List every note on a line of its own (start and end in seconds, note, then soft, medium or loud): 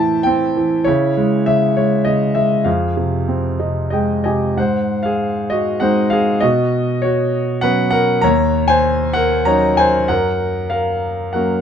0.00 0.82 A2 medium
0.00 0.57 E3 soft
0.00 0.83 E4 soft
0.00 0.88 C5 soft
0.00 0.88 E5 medium
0.00 0.23 G5 medium
0.00 0.23 A5 medium
0.23 0.85 C4 soft
0.23 0.81 G5 medium
0.57 0.86 E3 soft
0.84 1.45 C#3 medium
0.84 1.72 E4 medium
0.84 1.48 C#5 medium
1.17 1.76 G#3 soft
1.46 2.05 C#3 soft
1.46 1.74 E5 medium
1.77 2.34 G#3 soft
1.77 2.07 C#5 medium
2.05 2.65 C#3 soft
2.05 2.36 D#5 medium
2.35 2.65 G#3 soft
2.35 2.67 E5 medium
2.64 4.53 F2 medium
2.64 3.91 G#4 soft
2.64 4.20 F5 medium
2.97 3.58 C3 soft
3.28 4.54 C4 soft
3.59 4.24 C3 soft
3.59 3.89 D#5 soft
3.90 4.56 G#3 soft
3.90 4.23 G#4 soft
3.90 4.22 D#5 medium
3.90 4.23 G5 soft
4.24 4.57 C3 soft
4.24 4.56 G4 soft
4.24 4.58 D#5 medium
4.24 4.55 G#5 soft
4.57 6.38 G#2 soft
4.57 5.02 C5 medium
4.57 5.06 F#5 medium
5.03 5.48 G#4 medium
5.03 5.51 F5 medium
5.50 5.80 F#4 soft
5.50 5.82 D#5 medium
5.80 6.40 G#3 soft
5.80 6.40 C4 soft
5.80 6.41 D#4 soft
5.80 6.10 C5 medium
5.80 6.12 F#5 medium
6.10 6.41 G#4 medium
6.10 6.42 F5 medium
6.40 8.20 B2 medium
6.40 6.99 F#4 medium
6.40 7.04 D#5 medium
7.02 7.60 F#4 medium
7.02 7.64 C#5 medium
7.61 8.22 F#3 soft
7.61 8.22 B3 soft
7.61 8.22 C#4 soft
7.61 7.91 B4 medium
7.61 7.89 F#5 medium
7.91 8.21 A#4 medium
7.91 8.23 F#5 medium
8.21 10.05 D#2 medium
8.21 8.66 C#5 medium
8.21 8.70 A#5 loud
8.68 9.12 C5 medium
8.68 9.16 G#5 medium
9.13 9.44 A#4 medium
9.13 9.46 F#5 medium
9.45 10.07 F#3 soft
9.45 10.07 C#4 soft
9.45 10.07 D#4 medium
9.45 9.76 C#5 medium
9.45 9.75 A#5 medium
9.77 10.08 C5 medium
9.77 10.10 G#5 medium
10.08 11.61 F#2 medium
10.08 10.68 A#4 medium
10.08 10.73 F#5 medium
10.70 11.31 A#4 medium
10.70 11.31 F5 medium
11.33 11.61 F#3 soft
11.33 11.61 A#3 soft
11.33 11.61 C#4 soft
11.33 11.61 A#4 soft
11.33 11.61 F#5 medium